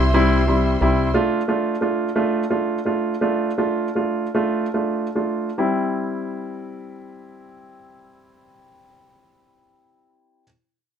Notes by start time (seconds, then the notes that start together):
Already playing: C2 G4 E5 C6
0.14 G3 C4 E4
0.47 G3 C4 E4
0.81 C2 G3 C4 E4
1.14 A3 D4 F4
1.48 A3 D4 F4
1.81 A3 D4 F4
2.16 A3 D4 F4
2.50 A3 D4 F4
2.85 A3 D4 F4
3.21 A3 D4 F4
3.58 A3 D4 F4
3.95 A3 D4 F4
4.35 A3 D4 F4
4.74 A3 D4 F4
5.15 A3 D4 F4
5.58 G3 C4 E4